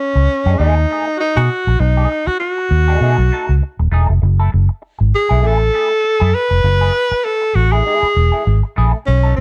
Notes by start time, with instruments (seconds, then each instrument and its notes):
Already playing: tenor saxophone C#4
0.15 fingered electric bass C#2, muted clean electric guitar stroke
0.46 fingered electric bass F#2, clean electric guitar A3 D#4 G#4
0.59 fingered electric bass D#2, clean electric guitar A3 D#4 G#4, tenor saxophone D#4
0.77 muted clean electric guitar stroke
0.91 clean electric guitar A3 D#4 G#4
1.08 muted clean electric guitar stroke
1.17 tenor saxophone D#4 F#4, muted clean electric guitar stroke
1.37 fingered electric bass B2, clean electric guitar A3 D#4 G#4, tenor saxophone F#4
1.50 muted clean electric guitar stroke
1.67 fingered electric bass A#1, muted clean electric guitar stroke
1.80 fingered electric bass B1, tenor saxophone D#4, muted clean electric guitar stroke
1.97 clean electric guitar A3 D#4 G#4
2.27 tenor saxophone F#4, muted clean electric guitar stroke, muted fingered electric bass stroke
2.40 tenor saxophone F#4, muted clean electric guitar stroke
2.58 muted clean electric guitar stroke
2.71 fingered electric bass D#2
2.88 clean electric guitar A3 D#4 G#4
3.01 fingered electric bass B2, clean electric guitar A3 D#4 G#4
3.18 fingered electric bass B1, muted clean electric guitar stroke
3.32 clean electric guitar A3 D#4 A4
3.49 fingered electric bass C#2, muted clean electric guitar stroke
3.62 muted clean electric guitar stroke
3.79 fingered electric bass D#1, muted clean electric guitar stroke
3.92 fingered electric bass E1, clean electric guitar A3 D#4 G#4
4.09 fingered electric bass F1, muted clean electric guitar stroke
4.22 fingered electric bass F#1, muted clean electric guitar stroke
4.39 clean electric guitar A3 E4 A4
4.54 fingered electric bass F#1
4.69 muted clean electric guitar stroke
4.82 muted clean electric guitar stroke
4.99 fingered electric bass G#1, muted clean electric guitar stroke
5.15 tenor saxophone G#4
5.29 fingered electric bass B1, clean electric guitar A3 E4 G#4
5.42 fingered electric bass A1, clean electric guitar A3 E4 G#4, tenor saxophone A4
5.60 muted clean electric guitar stroke
5.73 clean electric guitar A3 E4 G#4
5.90 muted clean electric guitar stroke
6.04 muted clean electric guitar stroke
6.20 fingered electric bass F#2, clean electric guitar A3 E4 G#4
6.35 tenor saxophone B4
6.50 fingered electric bass F1, muted clean electric guitar stroke
6.64 fingered electric bass F#1, muted clean electric guitar stroke
6.81 clean electric guitar A3 E4 G#4
6.95 muted clean electric guitar stroke
7.11 muted fingered electric bass stroke, muted clean electric guitar stroke
7.25 tenor saxophone A4, muted clean electric guitar stroke
7.42 muted clean electric guitar stroke
7.55 fingered electric bass A1, tenor saxophone F#4
7.72 clean electric guitar A3 E4 G#4, tenor saxophone G#4
7.86 clean electric guitar A3 E4 G#4
8.03 muted fingered electric bass stroke
8.16 fingered electric bass E1, muted clean electric guitar stroke
8.32 clean electric guitar A3 E4 G#4
8.45 fingered electric bass G#1, muted clean electric guitar stroke
8.63 muted clean electric guitar stroke
8.76 fingered electric bass A#1, clean electric guitar A3 E4 G#4
8.94 muted clean electric guitar stroke
9.06 fingered electric bass B1, tenor saxophone C#4, muted clean electric guitar stroke
9.23 clean electric guitar A3 D#4 A4
9.36 tenor saxophone C#4, muted clean electric guitar stroke